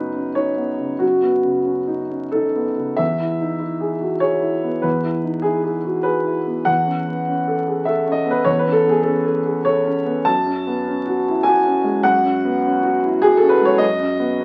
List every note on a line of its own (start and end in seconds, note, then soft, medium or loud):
0.00 0.97 F#2 medium
0.00 0.78 C#3 soft
0.00 0.57 B3 soft
0.00 0.15 C#4 soft
0.00 0.29 D#4 soft
0.00 0.36 B4 medium
0.15 0.49 C#4 soft
0.35 0.70 D#4 soft
0.35 1.01 C#5 medium
0.57 0.92 B3 soft
0.78 1.14 C#3 soft
0.99 2.95 F#2 soft
0.99 2.65 F#4 medium
1.22 1.58 B3 soft
1.44 1.79 C#3 soft
1.65 2.01 C#4 soft
1.87 2.23 D#4 soft
2.10 2.46 C#4 soft
2.32 2.69 D#4 soft
2.32 2.99 A4 medium
2.55 2.91 B3 soft
2.78 3.00 C#3 soft
2.96 4.80 E2 soft
2.96 4.22 E5 medium
3.20 3.53 E4 soft
3.41 3.62 D#4 soft
3.60 3.94 E4 soft
3.81 4.14 G#4 soft
4.01 4.22 F#4 soft
4.20 4.55 G#4 soft
4.20 4.83 C#5 medium
4.41 4.75 E4 soft
4.64 4.96 B3 soft
4.82 6.64 E2 medium
4.82 5.44 B4 medium
5.03 5.36 E4 soft
5.24 5.45 D#4 soft
5.42 5.77 E4 soft
5.42 5.62 G#4 medium
5.64 5.97 G#4 soft
5.85 6.05 F#4 soft
6.03 6.38 G#4 soft
6.03 6.67 B4 medium
6.24 6.59 E4 soft
6.47 6.68 B3 soft
6.65 8.43 E2 medium
6.65 7.87 F#5 medium
6.86 7.19 C#4 soft
7.08 7.28 B3 soft
7.29 7.61 C#4 soft
7.47 7.80 A4 soft
7.68 7.88 G#4 soft
7.85 8.19 A4 soft
7.85 8.16 E5 medium
8.06 8.39 C#4 soft
8.12 8.30 D#5 medium
8.26 8.59 B3 soft
8.31 8.47 B4 medium
8.45 10.23 E2 medium
8.45 8.61 C#5 medium
8.59 8.76 B4 medium
8.65 8.98 C#4 soft
8.72 8.90 A4 medium
8.86 9.06 B3 soft
8.86 9.06 G#4 medium
9.03 9.38 C#4 soft
9.03 9.24 A4 medium
9.25 9.57 A4 soft
9.46 9.66 G#4 soft
9.65 9.99 A4 medium
9.65 10.27 C#5 medium
9.85 10.19 C#4 medium
10.06 10.27 B3 soft
10.25 12.01 F#2 medium
10.25 11.45 A5 loud
10.46 10.79 C#4 soft
10.67 10.87 B3 soft
10.88 11.19 C#4 medium
11.06 11.38 F#4 medium
11.28 11.47 E4 soft
11.43 11.77 F#4 medium
11.43 12.04 G#5 loud
11.65 11.97 C#4 medium
11.84 12.16 G#3 soft
12.03 13.78 F#2 medium
12.03 13.22 F#5 loud
12.24 12.56 C#4 soft
12.45 12.64 B3 medium
12.67 12.97 C#4 medium
12.83 13.15 F#4 medium
13.04 13.23 E4 soft
13.22 13.54 F#4 medium
13.22 13.37 G#4 loud
13.37 13.52 A4 loud
13.42 13.74 C#4 medium
13.49 13.66 B4 medium
13.61 13.81 G#3 soft
13.65 13.81 C#5 loud
13.78 14.45 F#2 medium
13.78 14.45 D#5 loud
14.00 14.32 C#4 soft
14.19 14.40 B3 soft
14.41 14.45 C#4 medium